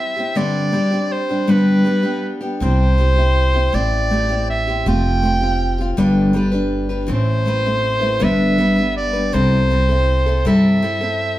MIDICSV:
0, 0, Header, 1, 4, 480
1, 0, Start_track
1, 0, Key_signature, 0, "major"
1, 0, Tempo, 746269
1, 243, Time_signature, 6, 3, 24, 8
1, 7325, End_track
2, 0, Start_track
2, 0, Title_t, "Soprano saxophone"
2, 0, Program_c, 0, 64
2, 0, Note_on_c, 0, 76, 77
2, 237, Note_on_c, 0, 74, 83
2, 246, Note_off_c, 0, 76, 0
2, 720, Note_on_c, 0, 72, 65
2, 729, Note_off_c, 0, 74, 0
2, 966, Note_on_c, 0, 71, 77
2, 975, Note_off_c, 0, 72, 0
2, 1505, Note_off_c, 0, 71, 0
2, 1690, Note_on_c, 0, 72, 89
2, 2408, Note_on_c, 0, 74, 92
2, 2418, Note_off_c, 0, 72, 0
2, 2887, Note_off_c, 0, 74, 0
2, 2895, Note_on_c, 0, 76, 83
2, 3114, Note_off_c, 0, 76, 0
2, 3138, Note_on_c, 0, 79, 94
2, 3826, Note_off_c, 0, 79, 0
2, 4588, Note_on_c, 0, 72, 91
2, 5298, Note_on_c, 0, 76, 92
2, 5307, Note_off_c, 0, 72, 0
2, 5767, Note_off_c, 0, 76, 0
2, 5771, Note_on_c, 0, 74, 83
2, 6007, Note_on_c, 0, 72, 82
2, 6016, Note_off_c, 0, 74, 0
2, 6724, Note_off_c, 0, 72, 0
2, 6735, Note_on_c, 0, 76, 85
2, 7325, Note_off_c, 0, 76, 0
2, 7325, End_track
3, 0, Start_track
3, 0, Title_t, "Steel-string acoustic guitar"
3, 0, Program_c, 1, 25
3, 0, Note_on_c, 1, 60, 39
3, 0, Note_on_c, 1, 64, 43
3, 0, Note_on_c, 1, 67, 45
3, 98, Note_off_c, 1, 67, 0
3, 105, Note_off_c, 1, 64, 0
3, 105, Note_on_c, 1, 67, 44
3, 113, Note_on_c, 1, 64, 45
3, 119, Note_off_c, 1, 60, 0
3, 127, Note_on_c, 1, 60, 36
3, 227, Note_off_c, 1, 60, 0
3, 227, Note_on_c, 1, 50, 66
3, 228, Note_on_c, 1, 43, 64
3, 230, Note_off_c, 1, 67, 0
3, 233, Note_off_c, 1, 64, 0
3, 234, Note_on_c, 1, 55, 75
3, 235, Note_on_c, 1, 60, 75
3, 235, Note_on_c, 1, 62, 73
3, 237, Note_on_c, 1, 67, 72
3, 457, Note_off_c, 1, 55, 0
3, 461, Note_off_c, 1, 60, 0
3, 465, Note_on_c, 1, 55, 50
3, 468, Note_off_c, 1, 62, 0
3, 469, Note_on_c, 1, 60, 55
3, 472, Note_off_c, 1, 67, 0
3, 475, Note_off_c, 1, 50, 0
3, 476, Note_off_c, 1, 43, 0
3, 476, Note_on_c, 1, 62, 59
3, 480, Note_on_c, 1, 67, 53
3, 575, Note_off_c, 1, 67, 0
3, 583, Note_on_c, 1, 67, 43
3, 586, Note_off_c, 1, 62, 0
3, 593, Note_on_c, 1, 62, 44
3, 594, Note_off_c, 1, 55, 0
3, 594, Note_off_c, 1, 60, 0
3, 602, Note_on_c, 1, 60, 41
3, 607, Note_on_c, 1, 55, 35
3, 822, Note_off_c, 1, 67, 0
3, 830, Note_on_c, 1, 67, 44
3, 832, Note_off_c, 1, 62, 0
3, 833, Note_off_c, 1, 60, 0
3, 838, Note_off_c, 1, 55, 0
3, 840, Note_on_c, 1, 62, 43
3, 841, Note_on_c, 1, 60, 39
3, 846, Note_on_c, 1, 55, 34
3, 942, Note_off_c, 1, 55, 0
3, 948, Note_on_c, 1, 43, 63
3, 949, Note_off_c, 1, 60, 0
3, 950, Note_off_c, 1, 62, 0
3, 950, Note_on_c, 1, 55, 61
3, 951, Note_off_c, 1, 67, 0
3, 951, Note_on_c, 1, 50, 61
3, 952, Note_on_c, 1, 59, 60
3, 958, Note_on_c, 1, 62, 68
3, 959, Note_on_c, 1, 67, 72
3, 1178, Note_off_c, 1, 55, 0
3, 1186, Note_on_c, 1, 55, 48
3, 1187, Note_off_c, 1, 59, 0
3, 1192, Note_off_c, 1, 62, 0
3, 1194, Note_off_c, 1, 67, 0
3, 1195, Note_on_c, 1, 59, 52
3, 1196, Note_off_c, 1, 43, 0
3, 1198, Note_off_c, 1, 50, 0
3, 1200, Note_on_c, 1, 62, 52
3, 1202, Note_on_c, 1, 67, 56
3, 1295, Note_off_c, 1, 67, 0
3, 1298, Note_off_c, 1, 62, 0
3, 1303, Note_on_c, 1, 67, 50
3, 1305, Note_on_c, 1, 62, 40
3, 1307, Note_off_c, 1, 59, 0
3, 1308, Note_off_c, 1, 55, 0
3, 1315, Note_on_c, 1, 59, 36
3, 1316, Note_on_c, 1, 55, 41
3, 1540, Note_off_c, 1, 67, 0
3, 1545, Note_off_c, 1, 62, 0
3, 1548, Note_on_c, 1, 67, 44
3, 1549, Note_off_c, 1, 59, 0
3, 1553, Note_on_c, 1, 62, 43
3, 1557, Note_off_c, 1, 55, 0
3, 1557, Note_on_c, 1, 59, 45
3, 1565, Note_on_c, 1, 55, 31
3, 1672, Note_off_c, 1, 55, 0
3, 1675, Note_on_c, 1, 48, 64
3, 1676, Note_off_c, 1, 67, 0
3, 1679, Note_off_c, 1, 62, 0
3, 1680, Note_on_c, 1, 55, 64
3, 1681, Note_off_c, 1, 59, 0
3, 1683, Note_on_c, 1, 64, 72
3, 1686, Note_on_c, 1, 60, 68
3, 1688, Note_on_c, 1, 67, 80
3, 1908, Note_off_c, 1, 55, 0
3, 1912, Note_off_c, 1, 60, 0
3, 1916, Note_on_c, 1, 55, 52
3, 1919, Note_off_c, 1, 64, 0
3, 1920, Note_off_c, 1, 48, 0
3, 1920, Note_on_c, 1, 60, 52
3, 1927, Note_off_c, 1, 67, 0
3, 1927, Note_on_c, 1, 64, 59
3, 1934, Note_on_c, 1, 67, 58
3, 2027, Note_off_c, 1, 67, 0
3, 2035, Note_on_c, 1, 67, 43
3, 2038, Note_off_c, 1, 64, 0
3, 2041, Note_off_c, 1, 55, 0
3, 2043, Note_off_c, 1, 60, 0
3, 2046, Note_on_c, 1, 64, 40
3, 2052, Note_on_c, 1, 60, 36
3, 2267, Note_off_c, 1, 67, 0
3, 2275, Note_on_c, 1, 67, 42
3, 2276, Note_off_c, 1, 64, 0
3, 2284, Note_off_c, 1, 60, 0
3, 2284, Note_on_c, 1, 64, 38
3, 2292, Note_on_c, 1, 60, 36
3, 2397, Note_off_c, 1, 60, 0
3, 2397, Note_on_c, 1, 57, 70
3, 2398, Note_off_c, 1, 64, 0
3, 2400, Note_off_c, 1, 67, 0
3, 2405, Note_on_c, 1, 60, 72
3, 2406, Note_on_c, 1, 64, 70
3, 2409, Note_on_c, 1, 67, 68
3, 2635, Note_off_c, 1, 57, 0
3, 2637, Note_off_c, 1, 60, 0
3, 2642, Note_on_c, 1, 57, 52
3, 2645, Note_on_c, 1, 60, 47
3, 2646, Note_off_c, 1, 64, 0
3, 2647, Note_off_c, 1, 67, 0
3, 2653, Note_on_c, 1, 64, 54
3, 2657, Note_on_c, 1, 67, 57
3, 2750, Note_off_c, 1, 67, 0
3, 2758, Note_on_c, 1, 67, 47
3, 2760, Note_off_c, 1, 64, 0
3, 2764, Note_off_c, 1, 57, 0
3, 2765, Note_off_c, 1, 60, 0
3, 2768, Note_on_c, 1, 64, 38
3, 2778, Note_on_c, 1, 60, 39
3, 2999, Note_off_c, 1, 67, 0
3, 3007, Note_off_c, 1, 64, 0
3, 3007, Note_on_c, 1, 67, 48
3, 3012, Note_off_c, 1, 60, 0
3, 3017, Note_on_c, 1, 64, 41
3, 3021, Note_on_c, 1, 60, 41
3, 3125, Note_off_c, 1, 60, 0
3, 3126, Note_off_c, 1, 67, 0
3, 3126, Note_on_c, 1, 53, 67
3, 3129, Note_on_c, 1, 57, 73
3, 3131, Note_off_c, 1, 64, 0
3, 3133, Note_on_c, 1, 60, 63
3, 3134, Note_on_c, 1, 65, 72
3, 3136, Note_on_c, 1, 67, 68
3, 3352, Note_off_c, 1, 57, 0
3, 3360, Note_off_c, 1, 60, 0
3, 3360, Note_on_c, 1, 57, 47
3, 3366, Note_off_c, 1, 53, 0
3, 3366, Note_off_c, 1, 65, 0
3, 3368, Note_on_c, 1, 60, 54
3, 3371, Note_off_c, 1, 67, 0
3, 3374, Note_on_c, 1, 65, 57
3, 3382, Note_on_c, 1, 67, 59
3, 3471, Note_off_c, 1, 67, 0
3, 3479, Note_on_c, 1, 67, 46
3, 3483, Note_off_c, 1, 57, 0
3, 3483, Note_off_c, 1, 65, 0
3, 3487, Note_off_c, 1, 60, 0
3, 3490, Note_on_c, 1, 65, 40
3, 3494, Note_on_c, 1, 60, 40
3, 3711, Note_off_c, 1, 67, 0
3, 3719, Note_on_c, 1, 67, 48
3, 3728, Note_off_c, 1, 65, 0
3, 3730, Note_off_c, 1, 60, 0
3, 3735, Note_on_c, 1, 65, 45
3, 3739, Note_on_c, 1, 60, 43
3, 3840, Note_on_c, 1, 43, 81
3, 3842, Note_off_c, 1, 67, 0
3, 3842, Note_on_c, 1, 50, 76
3, 3845, Note_off_c, 1, 60, 0
3, 3846, Note_off_c, 1, 65, 0
3, 3847, Note_on_c, 1, 55, 80
3, 3847, Note_on_c, 1, 62, 81
3, 3849, Note_on_c, 1, 67, 77
3, 3849, Note_on_c, 1, 71, 82
3, 4065, Note_off_c, 1, 55, 0
3, 4071, Note_off_c, 1, 62, 0
3, 4073, Note_on_c, 1, 55, 61
3, 4077, Note_off_c, 1, 67, 0
3, 4079, Note_on_c, 1, 62, 64
3, 4083, Note_off_c, 1, 43, 0
3, 4084, Note_off_c, 1, 50, 0
3, 4085, Note_off_c, 1, 71, 0
3, 4085, Note_on_c, 1, 67, 65
3, 4093, Note_on_c, 1, 71, 68
3, 4184, Note_off_c, 1, 71, 0
3, 4192, Note_on_c, 1, 71, 55
3, 4193, Note_off_c, 1, 67, 0
3, 4198, Note_off_c, 1, 62, 0
3, 4199, Note_off_c, 1, 55, 0
3, 4200, Note_on_c, 1, 67, 52
3, 4206, Note_on_c, 1, 62, 48
3, 4210, Note_on_c, 1, 55, 45
3, 4424, Note_off_c, 1, 71, 0
3, 4429, Note_off_c, 1, 67, 0
3, 4432, Note_off_c, 1, 62, 0
3, 4432, Note_on_c, 1, 71, 52
3, 4436, Note_on_c, 1, 67, 39
3, 4439, Note_off_c, 1, 55, 0
3, 4440, Note_on_c, 1, 62, 40
3, 4447, Note_on_c, 1, 55, 38
3, 4545, Note_on_c, 1, 45, 76
3, 4551, Note_off_c, 1, 62, 0
3, 4551, Note_on_c, 1, 52, 72
3, 4553, Note_off_c, 1, 55, 0
3, 4553, Note_on_c, 1, 60, 73
3, 4555, Note_on_c, 1, 57, 72
3, 4559, Note_off_c, 1, 67, 0
3, 4559, Note_off_c, 1, 71, 0
3, 4562, Note_on_c, 1, 64, 72
3, 4788, Note_off_c, 1, 57, 0
3, 4795, Note_off_c, 1, 45, 0
3, 4796, Note_on_c, 1, 57, 53
3, 4797, Note_off_c, 1, 60, 0
3, 4798, Note_off_c, 1, 52, 0
3, 4801, Note_off_c, 1, 64, 0
3, 4805, Note_on_c, 1, 60, 56
3, 4809, Note_on_c, 1, 64, 57
3, 4812, Note_on_c, 1, 71, 61
3, 4915, Note_off_c, 1, 64, 0
3, 4920, Note_off_c, 1, 57, 0
3, 4921, Note_off_c, 1, 60, 0
3, 4923, Note_on_c, 1, 64, 45
3, 4928, Note_on_c, 1, 60, 45
3, 4929, Note_off_c, 1, 71, 0
3, 4935, Note_on_c, 1, 57, 38
3, 5143, Note_off_c, 1, 64, 0
3, 5145, Note_on_c, 1, 71, 41
3, 5151, Note_off_c, 1, 60, 0
3, 5151, Note_on_c, 1, 64, 42
3, 5153, Note_off_c, 1, 57, 0
3, 5159, Note_on_c, 1, 60, 40
3, 5161, Note_on_c, 1, 57, 41
3, 5269, Note_on_c, 1, 43, 65
3, 5272, Note_off_c, 1, 60, 0
3, 5273, Note_on_c, 1, 50, 74
3, 5274, Note_on_c, 1, 59, 73
3, 5275, Note_off_c, 1, 57, 0
3, 5275, Note_off_c, 1, 71, 0
3, 5277, Note_off_c, 1, 64, 0
3, 5278, Note_on_c, 1, 55, 73
3, 5280, Note_on_c, 1, 62, 69
3, 5282, Note_on_c, 1, 71, 79
3, 5512, Note_off_c, 1, 59, 0
3, 5513, Note_off_c, 1, 55, 0
3, 5517, Note_off_c, 1, 43, 0
3, 5519, Note_off_c, 1, 50, 0
3, 5520, Note_on_c, 1, 55, 55
3, 5520, Note_on_c, 1, 59, 53
3, 5522, Note_off_c, 1, 62, 0
3, 5523, Note_off_c, 1, 71, 0
3, 5533, Note_on_c, 1, 62, 57
3, 5536, Note_on_c, 1, 71, 53
3, 5626, Note_off_c, 1, 71, 0
3, 5634, Note_on_c, 1, 71, 50
3, 5638, Note_off_c, 1, 62, 0
3, 5642, Note_off_c, 1, 55, 0
3, 5642, Note_off_c, 1, 59, 0
3, 5645, Note_on_c, 1, 62, 42
3, 5650, Note_on_c, 1, 59, 44
3, 5654, Note_on_c, 1, 55, 39
3, 5866, Note_off_c, 1, 71, 0
3, 5873, Note_off_c, 1, 62, 0
3, 5874, Note_on_c, 1, 71, 54
3, 5879, Note_off_c, 1, 55, 0
3, 5880, Note_on_c, 1, 62, 40
3, 5882, Note_off_c, 1, 59, 0
3, 5887, Note_on_c, 1, 55, 36
3, 5889, Note_on_c, 1, 59, 39
3, 5993, Note_off_c, 1, 55, 0
3, 5997, Note_on_c, 1, 48, 73
3, 5999, Note_off_c, 1, 71, 0
3, 6001, Note_on_c, 1, 55, 72
3, 6002, Note_off_c, 1, 62, 0
3, 6004, Note_off_c, 1, 59, 0
3, 6007, Note_on_c, 1, 60, 67
3, 6007, Note_on_c, 1, 69, 69
3, 6010, Note_on_c, 1, 64, 70
3, 6234, Note_off_c, 1, 55, 0
3, 6240, Note_off_c, 1, 48, 0
3, 6241, Note_off_c, 1, 60, 0
3, 6242, Note_on_c, 1, 55, 53
3, 6245, Note_off_c, 1, 69, 0
3, 6247, Note_off_c, 1, 64, 0
3, 6248, Note_on_c, 1, 60, 53
3, 6254, Note_on_c, 1, 64, 50
3, 6259, Note_on_c, 1, 69, 54
3, 6353, Note_off_c, 1, 69, 0
3, 6360, Note_on_c, 1, 69, 47
3, 6363, Note_off_c, 1, 55, 0
3, 6365, Note_off_c, 1, 64, 0
3, 6366, Note_off_c, 1, 60, 0
3, 6373, Note_on_c, 1, 64, 41
3, 6379, Note_on_c, 1, 60, 38
3, 6593, Note_off_c, 1, 69, 0
3, 6600, Note_on_c, 1, 69, 54
3, 6601, Note_off_c, 1, 64, 0
3, 6608, Note_on_c, 1, 64, 45
3, 6610, Note_off_c, 1, 60, 0
3, 6617, Note_on_c, 1, 60, 47
3, 6721, Note_on_c, 1, 48, 77
3, 6722, Note_off_c, 1, 69, 0
3, 6723, Note_off_c, 1, 60, 0
3, 6726, Note_off_c, 1, 64, 0
3, 6728, Note_on_c, 1, 55, 79
3, 6731, Note_on_c, 1, 60, 78
3, 6732, Note_on_c, 1, 64, 81
3, 6732, Note_on_c, 1, 69, 82
3, 6955, Note_off_c, 1, 60, 0
3, 6956, Note_off_c, 1, 55, 0
3, 6962, Note_off_c, 1, 48, 0
3, 6962, Note_on_c, 1, 60, 63
3, 6963, Note_on_c, 1, 55, 64
3, 6965, Note_off_c, 1, 69, 0
3, 6967, Note_off_c, 1, 64, 0
3, 6973, Note_on_c, 1, 69, 67
3, 6974, Note_on_c, 1, 64, 60
3, 7073, Note_off_c, 1, 69, 0
3, 7081, Note_on_c, 1, 69, 56
3, 7082, Note_off_c, 1, 60, 0
3, 7083, Note_off_c, 1, 55, 0
3, 7083, Note_off_c, 1, 64, 0
3, 7091, Note_on_c, 1, 64, 45
3, 7094, Note_on_c, 1, 60, 43
3, 7308, Note_off_c, 1, 69, 0
3, 7318, Note_off_c, 1, 64, 0
3, 7325, Note_off_c, 1, 60, 0
3, 7325, End_track
4, 0, Start_track
4, 0, Title_t, "Upright bass"
4, 0, Program_c, 2, 32
4, 1680, Note_on_c, 2, 36, 83
4, 2377, Note_off_c, 2, 36, 0
4, 2403, Note_on_c, 2, 33, 77
4, 3099, Note_off_c, 2, 33, 0
4, 3128, Note_on_c, 2, 29, 90
4, 3821, Note_off_c, 2, 29, 0
4, 3846, Note_on_c, 2, 31, 84
4, 4540, Note_off_c, 2, 31, 0
4, 4564, Note_on_c, 2, 33, 81
4, 5258, Note_off_c, 2, 33, 0
4, 5288, Note_on_c, 2, 31, 80
4, 5980, Note_off_c, 2, 31, 0
4, 6008, Note_on_c, 2, 36, 88
4, 6699, Note_off_c, 2, 36, 0
4, 6726, Note_on_c, 2, 43, 81
4, 7325, Note_off_c, 2, 43, 0
4, 7325, End_track
0, 0, End_of_file